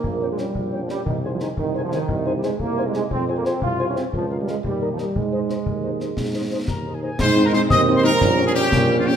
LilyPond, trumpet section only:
\new Staff \with { instrumentName = "Trumpet section" } { \time 6/8 \key aes \major \tempo 4. = 118 << { r8 g''8 g''8 r8 g''8 g''8 | r8 aes''8 aes''8 r8 aes''8 aes''8 | r8 aes''8 aes''8 r8 aes''8 aes''8 | r8 aes''8 aes''8 r8 aes''8 aes''8 |
r8 f''8 f''8 r8 ees''8 ees''8 | r8 ees''8 ees''8 r8 ees''8 ees''8 | r8 ees''8 ees''8 r8 ees''8 ees''8 | r2. |
r2. | } \\ { r2. | r2. | r2. | r2. |
r2. | r2. | r4. bes'8. aes'16 aes'8 | c''8. bes'16 c''8 ees''8. c''16 bes'8~ |
bes'8. aes'16 g'4~ g'16 f'16 g'8 | } >> }